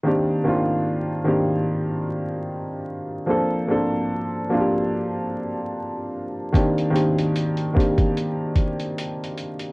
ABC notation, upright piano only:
X:1
M:4/4
L:1/8
Q:"Swing 16ths" 1/4=74
K:Cdor
V:1 name="Upright piano"
[E,B,CDG] [E,B,CDF] z [E,B,CDG]3 z2 | [F,B,CDA] [F,B,CDA] z [F,B,CDFG]3 z2 | [E,B,CDG] [E,B,CDG] z [E,B,CDG]3 z2 |]